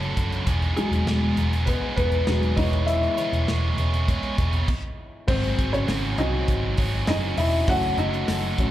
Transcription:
Already playing: F#1 F#3 A3 C#4 F#4 A4 C#5
0.03 closed hi-hat
0.17 F#1, kick, closed hi-hat
0.32 closed hi-hat
0.47 E1 E3 G#3 B3 D#4 G#4, kick, closed hi-hat
0.62 closed hi-hat
0.76 F#3 G#3 B3 D#4 G#4, closed hi-hat
0.91 E1, closed hi-hat
1.06 E1 E3 G#3 B3 D#4 G#4, snare
1.36 E1 B3 D#4 G#4, closed hi-hat
1.53 closed hi-hat
1.66 G#3 B3 D#4 G#4 B4, kick, closed hi-hat
1.96 E1 B3 D#4 G#4 B4, kick, closed hi-hat
2.12 closed hi-hat
2.27 E1 E3 F#3 G#3 B3 D#4 G#4, snare
2.43 closed hi-hat
2.57 E1 E3 G#3 B3 D#4 G#4 C#5 D#5, kick, open hi-hat
2.73 closed hi-hat
2.86 E4 E5, closed hi-hat
3.03 closed hi-hat
3.17 B3 G#4 C#5, closed hi-hat
3.33 E1, closed hi-hat
3.47 E1 E3 G#3 B3 G#4 C#5, snare
3.77 E1 B3 G#4 C#5, closed hi-hat
3.94 closed hi-hat
4.07 G#3 B3 G#4 C#5, kick, closed hi-hat
4.23 closed hi-hat
4.37 E1 B3 G#4 C#5, kick, closed hi-hat
4.53 closed hi-hat
4.68 kick, crash
5.28 G#1 G#2 D#3 F#3 C4 F#4 G#4 C5, kick, crash
5.44 open hi-hat
5.57 G#1 F#3 C4 F#4 G#4, kick, hi-hat pedal, open hi-hat
5.73 C#3 C#5, hi-hat pedal
5.87 G#1 F#3 C4 F#4 G#4, snare, hi-hat pedal, open hi-hat
6.18 C2 F#3 C4 D#4 D#5, hi-hat pedal, open hi-hat
6.48 G#1, kick, hi-hat pedal, open hi-hat
6.77 G#1 F#3 C4 F#4 G#4, kick, hi-hat pedal, open hi-hat
7.07 F#1 F#3 C4 D#4 F#4 G#4 D#5, snare, hi-hat pedal, open hi-hat
7.37 E1 F#3 C4 E4 F#4 G#4 E5, snare, hi-hat pedal, open hi-hat
7.68 F#1 F#3 A3 C#4 F#4 A4 F#5, kick, hi-hat pedal, open hi-hat
7.83 open hi-hat
7.98 F#1 C#4 D#4 F#4 A4 D#5, hi-hat pedal, open hi-hat
8.13 hi-hat pedal
8.28 F#1 F#3 C#4 F#4 A4, snare, hi-hat pedal, open hi-hat
8.44 open hi-hat
8.58 A1 F#3 A3 C#4, kick, hi-hat pedal, open hi-hat

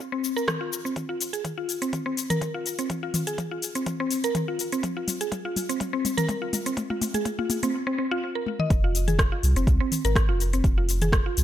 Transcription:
0.00 shaker
0.12 C4
0.24 shaker
0.36 A#4, shaker
0.48 kick, cross-stick, mid tom, shaker
0.61 F4
0.73 shaker
0.85 C4, shaker
0.96 kick, closed hi-hat, mid tom, shaker
1.09 F4
1.21 open hi-hat, shaker
1.33 G#4, closed hi-hat, shaker
1.45 kick, closed hi-hat, mid tom, shaker
1.58 F4
1.69 open hi-hat, shaker
1.82 C4, closed hi-hat, shaker
1.93 kick, closed hi-hat, mid tom, shaker
2.06 C4
2.17 open hi-hat, shaker
2.30 A#4, closed hi-hat, mid tom, shaker
2.41 kick, closed hi-hat, mid tom, shaker
2.54 F4
2.66 open hi-hat, shaker
2.79 C4, closed hi-hat, shaker
2.90 kick, closed hi-hat, mid tom, shaker
3.03 F4
3.14 open hi-hat, mid tom, shaker
3.27 G#4, closed hi-hat, shaker
3.38 kick, closed hi-hat, mid tom, shaker
3.51 F4
3.62 open hi-hat, shaker
3.75 C4, closed hi-hat, shaker
3.86 kick, closed hi-hat, mid tom, shaker
4.00 C4
4.11 open hi-hat, shaker
4.24 A#4, closed hi-hat, shaker
4.35 kick, closed hi-hat, mid tom, shaker
4.48 F4
4.59 open hi-hat, shaker
4.72 C4, closed hi-hat, shaker
4.83 kick, closed hi-hat, mid tom, shaker
4.97 F4
5.08 open hi-hat, mid tom, shaker
5.21 G#4, closed hi-hat, shaker
5.32 kick, closed hi-hat, mid tom, shaker
5.45 F4
5.56 open hi-hat, mid tom, shaker
5.69 C4, closed hi-hat, shaker
5.80 kick, closed hi-hat, mid tom, shaker
5.93 C4
6.05 open hi-hat, mid tom, shaker
6.17 A#4, closed hi-hat, mid tom, shaker
6.29 kick, closed hi-hat, mid tom, shaker
6.42 F4
6.53 open hi-hat, mid tom, shaker
6.66 C4, closed hi-hat, shaker
6.77 kick, closed hi-hat, mid tom, shaker
6.90 F4, mid tom
7.02 open hi-hat, mid tom, shaker
7.14 G#4, closed hi-hat, mid tom, shaker
7.25 kick, closed hi-hat, mid tom, shaker
7.39 F4, mid tom
7.50 open hi-hat, mid tom, shaker
7.63 C4, closed hi-hat, mid tom, shaker
7.87 C4
7.98 C4
8.11 F4
8.35 A#4
8.46 high tom
8.59 D#5, mid tom
8.70 F1, kick, closed hi-hat, shaker
8.84 F4
8.95 open hi-hat, shaker
9.08 G#4, closed hi-hat, mid tom, shaker
9.19 kick, cross-stick, closed hi-hat, shaker
9.32 F4
9.43 C2, open hi-hat, shaker
9.56 F1 C4, closed hi-hat, shaker
9.67 C2, kick, closed hi-hat, shaker
9.80 C4
9.92 open hi-hat, mid tom, shaker
10.05 G#1 A#4, closed hi-hat, shaker
10.16 kick, cross-stick, closed hi-hat, shaker
10.29 F1 F4
10.40 open hi-hat, shaker
10.53 C4, closed hi-hat, shaker
10.64 F1, kick, closed hi-hat, shaker
10.78 F4
10.89 open hi-hat, shaker
11.02 G#4, closed hi-hat, mid tom, shaker
11.12 kick, cross-stick, closed hi-hat, shaker
11.26 F4
11.37 C2, open hi-hat, shaker

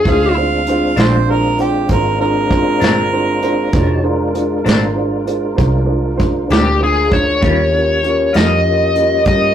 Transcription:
Already playing: G#4
0.05 D2 A3 C#4 D4 D#4 F4 F#4 G#4 C5 F5, kick, closed hi-hat
0.34 G#3 C4 D4 F4 G#4
0.38 C5
0.67 D4 F4 G#4 C5, closed hi-hat
0.96 A#1 A#2 G#3 C4 D4 F4 G#4 C5, snare, closed hi-hat
1.28 D4 F4 G#4 A#4 C5
1.57 D4 F4 G4 G#4 C5, closed hi-hat
1.89 G#1 D4 F4 G#4 A#4 C5, kick, closed hi-hat
2.19 D4 F4 G#4 A#4 C5
2.50 D4 F4 G#4 C5, kick, closed hi-hat
2.80 G1 A#2 G#3 C4 D4 F4 G#4 C5, snare, closed hi-hat
3.12 D4 F4 G#4 C5
3.41 D4 F4 G#4 C5, closed hi-hat
3.73 F1 D4 D#4 F4 F#4 G#4 C5 C#5 A5, kick, closed hi-hat
4.03 G#3 D4 F4 G#4 A#4 C5
4.33 D4 F4 G#4 C5, closed hi-hat
4.63 G#1 A#2 G#3 C4 D4 F4 G#4 C5, closed hi-hat
4.69 snare
4.94 D4 F4 G#4 C5
5.25 D4 F4 G#4 C5, closed hi-hat
5.55 C2 D4 F4 G#4 C5, kick, closed hi-hat
5.84 D4 F4 G#4 C5
6.16 D4 F4 G#4 C5, closed hi-hat
6.20 kick
6.46 D4 F4 G#4 C5, closed hi-hat
6.50 D2 A#2 G#3 C4 D4 G4, snare
6.78 D4 F4 G#4 C5
6.84 G#4
7.09 D4 F4 G#4 C5 C#5, kick, closed hi-hat
7.39 D#2 D#3 G3 A#3 C#4 F4 G4 A#4, kick, closed hi-hat
7.72 C#4 F4 G4 A#4
8.03 C#4 F4 G4 A#4, closed hi-hat
8.33 F2 D#3 G3 C#4 F4 A#4 D#5, snare, closed hi-hat
8.64 C#4 F4 G4 A#4
8.95 C#4 F4 G4 A#4, closed hi-hat
9.25 G2 C#4 F4 G4 A#4 D#5, kick, closed hi-hat

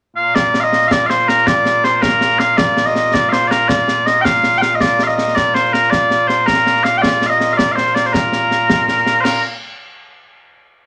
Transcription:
0.16 A#2 A#3 F4 F5
0.35 D5, concert bass drum, snare
0.54 snare
0.60 D#5 F5, snare
0.73 D#5, snare
0.82 snare
0.88 D5 F5, concert bass drum, snare
1.06 C5 F5, snare
1.19 snare
1.28 A#4, snare
1.38 snare
1.47 D5, concert bass drum, snare
1.65 snare
1.84 C5, snare
1.95 C5
2.02 A#4, concert bass drum, snare
2.12 snare
2.21 snare
2.30 snare
2.39 F5, snare
2.57 D5, concert bass drum, snare
2.77 snare
2.86 D#5, snare
2.96 D#5, snare
3.05 snare
3.13 D5, concert bass drum, snare
3.29 C5 F5, snare
3.42 snare
3.48 A#4 D5, snare
3.60 snare
3.68 D5, concert bass drum, snare
3.88 snare
4.06 D#5, snare
4.21 F5 G5, concert bass drum, snare
4.34 snare
4.44 snare
4.53 snare
4.58 F5 G5
4.62 snare
4.75 D#5
4.80 D5, concert bass drum, snare
4.99 snare
5.03 D#5 F5
5.09 snare
5.16 D#5, snare
5.28 snare
5.35 D5, concert bass drum, snare
5.54 C5, snare
5.65 snare
5.73 A#4, snare
5.83 snare
5.90 D5, concert bass drum, snare
6.11 snare
6.28 C5, snare
6.46 A#4, concert bass drum, snare
6.66 snare
6.76 snare
6.84 F5, snare
6.98 G5
7.02 D5, concert bass drum, snare
7.22 snare
7.26 D#5 F5
7.31 snare
7.38 D#5, snare
7.50 F5, snare
7.57 D5, concert bass drum, snare
7.72 C5 F5
7.78 snare
7.87 snare
7.95 D5, snare
8.05 C5, snare
8.13 A#4, concert bass drum, snare
8.33 snare
8.51 snare
8.70 concert bass drum, snare
8.79 snare
8.88 snare
8.98 snare
9.06 snare
9.21 A#4 C5
9.25 snare, crash

